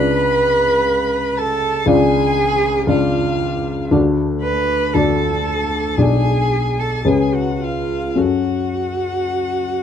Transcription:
Already playing: C#2 D4 F4 B4 D5 B5
1.37 A4 A5
1.86 C#2 D4 F4 D5 G#5
1.90 G#4
2.87 C#2 D4 F4 D5 F5
3.91 D2 D4 F#4 D5
4.42 B4 B5
4.94 D2 D4 F#4 A4 D5 A5
5.97 B1 D4 G#4 D5
6.02 G#5
6.79 A4 A5
7.05 C#2 C#4 G#4 B4 G#5
7.33 F#4 F#5
7.61 F4 F5
8.15 F#2 C#4 F#4 A4
8.21 F#5

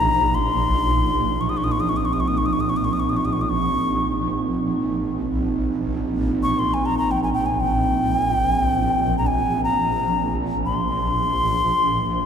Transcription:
Already playing: A#1 D#4 A#5
0.35 C6
1.41 C#6
1.49 D#6
1.57 C#6
1.61 C4 D#6
1.72 C#6
1.80 D#6
1.89 C#6
1.97 D#6
2.05 C#6
2.13 D#6
2.20 C#6
2.28 D#6
2.38 C#6
2.46 D#6
2.53 C#6
2.60 D#6
2.69 C#6
2.77 D#6
2.84 C#6
2.93 D#6
3.00 C#6
3.09 D#6
3.17 C#6
3.25 D#6
3.33 C#6
3.41 D#6
3.49 C#6
4.26 A#1
6.43 C#6
6.59 C6
6.74 G#5
6.86 A#5
6.98 A#5
7.11 G5
7.23 G#5
7.33 G5
7.46 G#5
7.60 G5
8.18 G#5
8.30 G5
8.50 G#5
8.62 G5
9.18 A#5
9.27 G#5
9.64 A#5
10.66 C6

